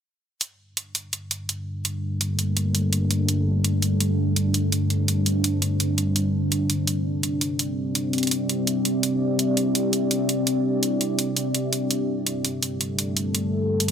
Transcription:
0.41 ambient pad G3, closed hi-hat
0.52 ambient pad D4
0.77 closed hi-hat
0.95 closed hi-hat
1.13 closed hi-hat
1.31 closed hi-hat
1.43 ambient pad A4
1.49 closed hi-hat
1.71 ambient pad A#4
1.85 closed hi-hat
2.21 closed hi-hat
2.39 closed hi-hat
2.57 closed hi-hat
2.75 closed hi-hat
2.93 closed hi-hat
3.11 closed hi-hat
3.29 closed hi-hat
3.64 closed hi-hat
3.82 closed hi-hat
4.00 closed hi-hat
4.36 closed hi-hat
4.42 ambient pad C5
4.54 closed hi-hat
4.72 closed hi-hat
4.90 closed hi-hat
5.08 closed hi-hat
5.26 closed hi-hat
5.44 closed hi-hat
5.62 closed hi-hat
5.80 closed hi-hat
5.98 closed hi-hat
6.16 ambient pad C4, closed hi-hat
6.52 closed hi-hat
6.68 ambient pad G4, closed hi-hat
6.78 ambient pad D5
6.87 closed hi-hat
7.23 closed hi-hat
7.37 ambient pad E5
7.41 closed hi-hat
7.59 closed hi-hat
7.95 closed hi-hat
8.13 closed hi-hat
8.18 closed hi-hat
8.23 closed hi-hat
8.27 closed hi-hat
8.31 closed hi-hat
8.49 closed hi-hat
8.67 closed hi-hat
8.85 closed hi-hat
9.03 closed hi-hat
9.39 closed hi-hat
9.57 closed hi-hat
9.75 closed hi-hat
9.93 closed hi-hat
10.11 closed hi-hat
10.29 closed hi-hat
10.47 closed hi-hat
10.83 closed hi-hat
11.01 closed hi-hat
11.19 closed hi-hat
11.37 closed hi-hat
11.55 closed hi-hat
11.73 closed hi-hat
11.91 ambient pad G3, closed hi-hat
12.05 ambient pad D4
12.27 closed hi-hat
12.41 ambient pad A4, closed hi-hat
12.63 closed hi-hat
12.81 closed hi-hat
12.93 ambient pad A#4
12.99 closed hi-hat
13.17 closed hi-hat
13.35 closed hi-hat
13.80 closed hi-hat

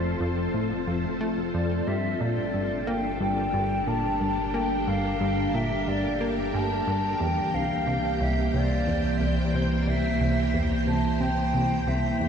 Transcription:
Already playing: sub bass F1, analog synth bass F2, string machine C4 F4 A4 C5, flute C5
0.20 analog synth bass F2
0.54 analog synth bass A2
0.87 analog synth bass F2
1.21 analog synth bass A3
1.54 analog synth bass F2, flute D5
1.87 sub bass G1, analog synth bass G2, flute E5
2.12 string machine G5
2.21 analog synth bass A#2, string machine D4, flute D5
2.54 analog synth bass G2
2.87 analog synth bass A#3, flute G5
2.94 string machine G4
3.20 analog synth bass G2, flute G5
3.32 string machine A#4
3.54 analog synth bass G2
3.87 analog synth bass A#2, flute A5
4.21 analog synth bass G2
4.54 analog synth bass A#3, flute G5
4.87 analog synth bass G2, flute F5
5.21 analog synth bass G2
5.54 analog synth bass A#2, flute E5
5.88 analog synth bass G2, flute D5
6.21 analog synth bass A#3
6.54 analog synth bass G2, flute A5
6.87 analog synth bass G2
7.20 sub bass C2, analog synth bass E2, string machine A#3, flute G5
7.27 string machine E3
7.54 analog synth bass C2, flute F5
7.87 analog synth bass C3
8.20 analog synth bass C2, flute E5
8.41 string machine C5
8.54 analog synth bass C2, flute D5
8.87 analog synth bass E2
9.18 analog synth bass C2, flute E5
9.27 flute D5
9.36 flute C5
9.45 flute D5
9.54 analog synth bass C3, flute C5
9.87 analog synth bass C2, flute E5
10.21 analog synth bass C2
10.54 analog synth bass E2
10.87 analog synth bass C2, flute A5
11.20 analog synth bass C3, flute G5
11.54 analog synth bass C2
11.87 analog synth bass C2, flute E5
12.20 analog synth bass E2

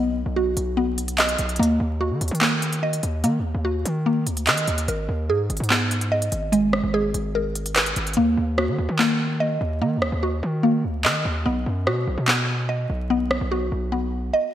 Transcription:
Already playing: 808-style bass B1, synth pluck B3 F#4 D#5
0.26 808-style bass B1
0.36 synth pluck F#4
0.57 808-style bass B1, closed hi-hat
0.77 synth pluck B3
0.98 closed hi-hat
1.08 closed hi-hat
1.18 synth pluck D#5, clap, closed hi-hat
1.29 closed hi-hat
1.39 808-style bass B1, closed hi-hat
1.49 closed hi-hat
1.56 808-style bass D#2, synth pluck A#3, closed hi-hat
1.63 closed hi-hat
1.80 808-style bass D#2
2.01 synth pluck F#4
2.11 808-style bass D#3
2.21 808-style bass D#2, closed hi-hat
2.28 808-style bass D#3, closed hi-hat
2.35 closed hi-hat
2.41 synth pluck A#3, clap
2.62 closed hi-hat
2.73 closed hi-hat
2.83 synth pluck D#5
2.93 closed hi-hat
3.03 808-style bass D#2, closed hi-hat
3.24 808-style bass D#3, synth pluck A#3, closed hi-hat
3.39 808-style bass D#2
3.55 808-style bass D#2
3.65 synth pluck F#4
3.85 808-style bass D#3, closed hi-hat
4.06 synth pluck A#3
4.26 808-style bass D2, closed hi-hat
4.37 closed hi-hat
4.47 808-style bass D#3, synth pluck D#5, clap, closed hi-hat
4.58 closed hi-hat
4.67 808-style bass D#2, closed hi-hat
4.78 closed hi-hat
4.88 808-style bass G#1, synth pluck A#4, closed hi-hat
5.09 808-style bass D#2
5.29 808-style bass G#2, synth pluck G#4
5.50 808-style bass G#1, closed hi-hat
5.57 808-style bass G#2, closed hi-hat
5.64 closed hi-hat
5.70 synth pluck B3, clap
5.91 closed hi-hat
6.01 closed hi-hat
6.12 synth pluck D#5
6.22 closed hi-hat
6.32 808-style bass G#1, closed hi-hat
6.52 synth pluck G#3, closed hi-hat
6.73 cross-stick
6.83 808-style bass G#1
6.94 synth pluck G#4
7.14 808-style bass G#1, closed hi-hat
7.35 synth pluck A#4
7.55 closed hi-hat
7.66 closed hi-hat
7.76 synth pluck B4, clap, closed hi-hat
7.86 closed hi-hat
7.96 808-style bass G#1, closed hi-hat
8.07 closed hi-hat
8.13 808-style bass D#2, synth pluck A#3, closed hi-hat
8.37 808-style bass D#2
8.58 synth pluck F#4, cross-stick
8.68 808-style bass D#3
8.78 808-style bass D#2
8.89 808-style bass D#3
8.99 synth pluck A#3, clap
9.40 synth pluck D#5
9.61 808-style bass D#2
9.81 808-style bass D#3, synth pluck A#3
9.97 808-style bass D#2
10.02 cross-stick
10.12 808-style bass D#2
10.23 synth pluck F#4
10.43 808-style bass D#3
10.63 synth pluck A#3
10.84 808-style bass D2
11.05 808-style bass D#3, synth pluck D#5, clap
11.25 808-style bass D#2
11.46 808-style bass B1, synth pluck B3
11.66 808-style bass F#2
11.87 808-style bass B2, synth pluck F#4, cross-stick
12.07 808-style bass B1
12.18 808-style bass B2
12.28 synth pluck B3, clap
12.69 synth pluck D#5
12.90 808-style bass B1
13.10 synth pluck B3
13.31 cross-stick
13.41 808-style bass B1
13.52 synth pluck F#4
13.72 808-style bass B1
13.92 synth pluck B3
14.34 synth pluck D#5

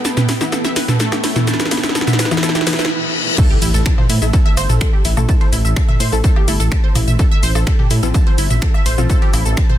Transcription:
Already playing: supersaw synth B3, string section E4 G4 B4 G5, riser
0.05 synth pluck A5, snare, shaker
0.17 synth pluck B4, snare, mid tom, shaker
0.29 detuned saw bass A2, synth pluck E4, snare, open hi-hat, shaker
0.41 detuned saw bass A1, synth stab E3 B3 E4, synth pluck E5, snare, shaker
0.52 synth pluck A4, snare, low woodblock, shaker
0.65 synth pluck E5, snare, shaker
0.76 detuned saw bass A2, synth pluck B4, snare, open hi-hat, shaker
0.88 detuned saw bass A1, synth pluck A4, snare, mid tom, shaker
1.00 supersaw synth A3, synth pluck A4, snare, shaker
1.12 synth pluck G4, snare, low woodblock, shaker
1.24 detuned saw bass A2, synth pluck E4, snare, open hi-hat, shaker
1.36 synth stab E3 B3 E4, synth pluck A4, snare, mid tom, shaker
1.47 synth pluck A5, snare, shaker
1.54 snare
1.60 synth pluck B4, snare, shaker
1.65 snare
1.71 detuned saw bass A1, supersaw synth B3, synth pluck E4, snare, open hi-hat, low woodblock, shaker
1.77 snare
1.83 detuned saw bass A1, synth pluck E5, snare, shaker
1.89 snare
1.95 synth pluck A4, snare, shaker
2.01 snare
2.07 synth pluck E5, snare, mid tom, shaker
2.13 snare
2.19 detuned saw bass A2, synth pluck B4, snare, open hi-hat, shaker
2.25 snare
2.31 synth stab E3 B3 E4, synth pluck A4, snare, low woodblock, shaker
2.37 snare
2.43 supersaw synth E4, synth pluck A4, snare, reverse cymbal, shaker
2.49 snare
2.55 synth pluck G4, snare, shaker
2.61 snare
2.67 synth stab E3 B3 E4, synth pluck B4, snare, open hi-hat, shaker
2.73 snare
2.79 synth pluck B4, snare, shaker
2.85 snare
3.38 synth pluck A4, kick, crash, ride, impact, low woodblock, shaker
3.50 synth pluck G4
3.62 detuned saw bass A1, synth pluck E4, open hi-hat, ride, shaker
3.74 detuned saw bass A1, synth pluck A4, snare, shaker
3.86 synth pluck A5, finger snap, kick, snare, ride, shaker
3.98 synth pluck C5, snare, mid tom, low woodblock
4.10 detuned saw bass A2, synth pluck E4, snare, open hi-hat, ride, shaker
4.22 detuned saw bass A1, synth stab A3 E4 A4, synth pluck E5, snare, shaker
4.33 synth pluck A4, kick, ride, shaker
4.46 synth pluck E5, ride
4.57 detuned saw bass G1, synth pluck C5, open hi-hat, ride, low woodblock, shaker
4.69 detuned saw bass A1, synth pluck A4, snare, mid tom, shaker
4.81 synth pluck A4, finger snap, kick, snare, ride, shaker
4.93 synth pluck G4
5.05 detuned saw bass A1, synth pluck E4, open hi-hat, ride, shaker
5.17 detuned saw bass A1, synth stab A3 E4 A4, synth pluck A4, mid tom, low woodblock, shaker
5.29 synth pluck A5, kick, ride, shaker
5.41 synth pluck C5, ride
5.52 detuned saw bass A1, synth pluck E4, open hi-hat, ride, shaker
5.65 detuned saw bass A1, synth pluck E5, shaker
5.76 synth pluck A4, finger snap, kick, snare, ride, low woodblock, shaker
5.88 synth pluck E5, snare, mid tom
6.00 detuned saw bass A2, synth pluck C5, open hi-hat, ride, shaker
6.12 detuned saw bass A1, synth stab A3 E4 A4, synth pluck A4, snare, shaker
6.24 synth pluck A4, kick, ride, shaker
6.36 synth pluck G4, low woodblock
6.48 detuned saw bass G1, synth stab A3 E4 A4, synth pluck E4, open hi-hat, ride, shaker
6.60 detuned saw bass A1, synth pluck A4, snare, shaker
6.72 synth pluck A5, finger snap, kick, snare, ride, shaker
6.84 synth pluck C5
6.95 detuned saw bass A1, synth pluck E4, mid tom, open hi-hat, ride, low woodblock, shaker
7.08 detuned saw bass A1, synth pluck E5, mid tom, shaker
7.19 synth pluck A4, kick, ride, shaker
7.31 synth pluck E5
7.43 detuned saw bass A1, synth pluck C5, open hi-hat, ride, shaker
7.55 detuned saw bass A1, synth pluck A4, snare, low woodblock, shaker
7.67 synth pluck A4, finger snap, kick, snare, ride, shaker
7.79 synth pluck G4, snare, mid tom
7.91 detuned saw bass A2, synth pluck E4, snare, open hi-hat, ride, shaker
8.03 detuned saw bass A1, synth stab F3 C4 F4, synth pluck A4, snare, shaker
8.14 synth pluck A5, kick, ride, low woodblock, shaker
8.27 synth pluck C5, ride
8.38 detuned saw bass G1, synth pluck E4, open hi-hat, ride, shaker
8.50 detuned saw bass A1, synth pluck E5, snare, mid tom, shaker
8.62 synth pluck A4, finger snap, kick, snare, ride, shaker
8.74 synth pluck E5, low woodblock
8.86 detuned saw bass A1, synth pluck C5, open hi-hat, ride, shaker
8.98 detuned saw bass A1, synth stab F3 C4 F4, synth pluck A4, mid tom, shaker
9.10 synth pluck A4, kick, ride, shaker
9.22 synth pluck G4, ride
9.33 detuned saw bass A1, synth pluck E4, open hi-hat, ride, low woodblock, shaker
9.46 detuned saw bass A1, synth pluck A4, shaker
9.57 synth pluck A5, finger snap, kick, snare, ride, shaker
9.69 synth pluck C5, snare, mid tom

